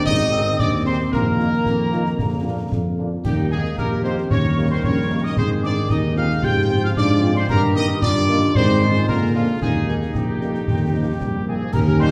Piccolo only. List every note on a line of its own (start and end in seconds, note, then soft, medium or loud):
0.06 0.61 D#6 medium
0.60 0.85 D6 medium
0.86 1.14 C6 medium
1.13 2.72 A#5 medium
3.25 3.49 G5 medium
3.51 3.57 G#5 medium
3.77 3.83 A#5 medium
4.05 4.11 C6 medium
4.31 4.68 C#6 medium
4.71 4.83 C6 medium
4.84 5.26 C#6 medium
5.24 5.37 D#6 medium
5.37 5.43 C6 medium
5.63 5.69 D6 medium
5.91 5.97 D#6 medium
6.17 6.23 F6 medium
6.44 6.81 G6 medium
6.84 6.90 F6 medium
6.97 7.34 D6 medium
7.36 7.48 C6 medium
7.49 7.74 A#5 medium
7.77 8.05 D#6 medium
8.03 8.57 D6 medium
8.55 9.08 C6 medium
9.08 9.14 A#5 medium
9.35 9.41 F5 medium
9.62 9.94 G#5 medium
10.15 11.43 G5 medium
11.48 11.54 G#5 medium
11.74 11.80 A#5 medium
12.00 12.06 C6 medium